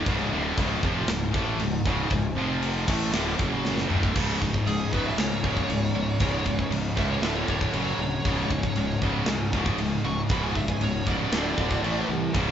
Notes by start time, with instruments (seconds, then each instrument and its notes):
0.06 fingered electric bass C#1, distorted electric guitar C#2 G#2 C#3, kick, crash
0.31 fingered electric bass D1, distorted electric guitar D2 A2 D3
0.57 fingered electric bass C#1, distorted electric guitar C#2 G#2 C#3, kick, crash
0.83 fingered electric bass F1, distorted electric guitar F2 C3 F3, kick
1.08 fingered electric bass C#1, distorted electric guitar C#2 G#2, snare, crash
1.34 fingered electric bass A1, distorted electric guitar A2 E3 A3, kick
1.59 fingered electric bass C#1, distorted electric guitar C#2 G#2, crash
1.85 fingered electric bass C#1, distorted electric guitar C#2 G#2 C#3, kick
2.10 fingered electric bass C#1, distorted electric guitar C#2 G#2, kick, crash
2.35 fingered electric bass F1, distorted electric guitar F2 C3 F3
2.62 crash
2.88 fingered electric bass A1, distorted electric guitar A2 E3 A3, kick, crash
3.13 fingered electric bass D1, distorted electric guitar D2 A2 D3, snare, crash
3.39 fingered electric bass F#1, distorted electric guitar F#2 C#3 F#3, kick
3.65 snare
3.78 snare
3.90 fingered electric bass D1, distorted electric guitar D2 A2 D3, mid tom
4.03 kick
4.15 fingered electric bass C#1, distorted electric guitar C#2 G#2 C#3, kick, crash
4.42 fingered electric bass C#1, distorted electric guitar C#2 G#2, kick
4.54 kick
4.67 fingered electric bass C#1, distorted electric guitar C#2 G#2, lead electric guitar G#4, crash
4.93 fingered electric bass C#1, distorted electric guitar C#2 G#2 C#3, lead electric guitar B4, kick
5.06 lead electric guitar E5
5.18 fingered electric bass C#2, distorted electric guitar C#2 G#2 C#3, lead electric guitar C#5, snare, crash
5.44 fingered electric bass C#1, distorted electric guitar C#2 G#2 C#3, kick
5.57 kick
5.69 fingered electric bass C#1, distorted electric guitar C#2 G#2, crash
5.95 fingered electric bass C#1, distorted electric guitar C#2 G#2
6.20 fingered electric bass C#1, distorted electric guitar C#2 G#2 C#3, kick, crash
6.45 distorted electric guitar C#2 G#2, kick
6.59 kick
6.71 fingered electric bass C#1, distorted electric guitar C#2 G#2, crash
6.96 distorted electric guitar C#2 G#2 C#3, fingered electric bass C#2, lead electric guitar E5, kick
7.10 lead electric guitar C#5
7.21 fingered electric bass D1, distorted electric guitar D2 A2 D3, lead electric guitar E5, snare, crash
7.36 lead electric guitar C#5
7.48 fingered electric bass D1, distorted electric guitar D2 A2 D3, lead electric guitar C#5, kick
7.61 kick
7.73 fingered electric bass F#1, distorted electric guitar F#2 C#3 F#3, crash
7.99 fingered electric bass D1, distorted electric guitar F#2 C#3
8.25 fingered electric bass C#1, distorted electric guitar C#2 G#2 C#3, kick, crash
8.50 fingered electric bass C#1, distorted electric guitar C#2 G#2, kick
8.63 kick
8.76 fingered electric bass C#1, distorted electric guitar C#2 G#2, crash
9.02 fingered electric bass C#1, distorted electric guitar C#2 G#2 C#3, kick
9.26 distorted electric guitar C#2 G#2, fingered electric bass C#2, snare, crash
9.31 distorted electric guitar C#3
9.53 fingered electric bass C#1, distorted electric guitar C#2 G#2 C#3, kick
9.66 kick
9.78 fingered electric bass C#1, distorted electric guitar C#2 G#2, crash
10.04 fingered electric bass C#1, distorted electric guitar C#2 G#2, lead electric guitar C#6
10.29 fingered electric bass C#1, distorted electric guitar C#2 G#2 C#3, lead electric guitar B5, kick, crash
10.43 lead electric guitar G#5
10.55 distorted electric guitar C#2 G#2, lead electric guitar E5, kick
10.68 lead electric guitar G#5, kick
10.81 fingered electric bass C#1, distorted electric guitar C#2 G#2, lead electric guitar C#5, crash
11.07 fingered electric bass C#1, distorted electric guitar C#2 G#2 C#3, lead electric guitar D5, kick
11.32 fingered electric bass D1, distorted electric guitar D2 A2 D3, snare, crash
11.57 fingered electric bass D1, distorted electric guitar D2 A2 D3, kick
11.71 kick
11.83 fingered electric bass A1, distorted electric guitar A2 E3 A3, crash
12.09 fingered electric bass C2, distorted electric guitar A2 E3
12.34 fingered electric bass C#1, distorted electric guitar C#2 G#2 C#3, kick, crash